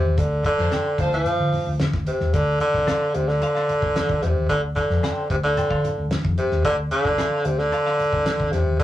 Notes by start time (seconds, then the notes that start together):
Already playing: C3
0.04 D#2
0.17 D2 D3, kick, closed hi-hat, muted conga
0.44 D3, kick, closed hi-hat, muted conga
0.58 F2 F4 A4 C5, snare
0.71 A4 C5 G5, snare, closed hi-hat, high conga
0.98 D2 F3 F4 A4 C5, kick, closed hi-hat, muted conga
1.12 F3, snare
1.26 muted fingered electric bass stroke, closed hi-hat, low conga
1.40 D3
1.53 open hi-hat, muted conga, low conga
1.67 D2
1.79 D3, snare, closed hi-hat, high conga
1.93 D2, kick, snare, high conga
2.06 C3, closed hi-hat
2.20 D#2, snare, high conga
2.34 D2 D3, kick, closed hi-hat, muted conga
2.60 D3, closed hi-hat, muted conga
2.74 C2, kick, snare
2.87 A4 C5 F5, snare, closed hi-hat, high conga
3.14 D2 C3, closed hi-hat, muted conga
3.28 D3, snare
3.42 A4 C5 F5, closed hi-hat
3.55 A4 C5 F5, snare
3.68 muted fingered electric bass stroke, closed hi-hat, muted conga
3.82 C2, kick
3.95 snare, closed hi-hat, high conga
4.09 C2, kick, high conga
4.22 E2 C3, snare, closed hi-hat
4.37 D#2
4.49 D2 D3, kick, closed hi-hat, muted conga
4.75 D3, kick, closed hi-hat, muted conga
4.90 F2, snare
5.03 A4 C5 G5, snare, closed hi-hat, high conga
5.30 D2 C3, kick, closed hi-hat, muted conga
5.43 D3, snare
5.57 A4 C5 G5, muted fingered electric bass stroke, closed hi-hat, low conga
5.70 D3 A4 C5 F5, kick
5.84 closed hi-hat, low conga
5.98 D2
6.11 muted fingered electric bass stroke, snare, closed hi-hat, high conga
6.24 F2, kick, high conga
6.38 C3, closed hi-hat
6.51 D#2, snare
6.65 D2 D3, kick, closed hi-hat, muted conga
6.91 D3, closed hi-hat, muted conga
7.05 C2, kick, snare
7.18 A4 C5 F5, snare, closed hi-hat, high conga
7.45 D2 C3, closed hi-hat, muted conga
7.59 D3, snare
7.72 A4 C5 F5, closed hi-hat
7.86 A4 C5 F5, snare
7.99 muted fingered electric bass stroke, closed hi-hat, muted conga
8.13 C2, kick
8.26 snare, closed hi-hat, high conga
8.39 C2, kick, high conga
8.52 E2 C3, snare, closed hi-hat
8.67 D#2
8.79 D2 D3, kick, closed hi-hat, muted conga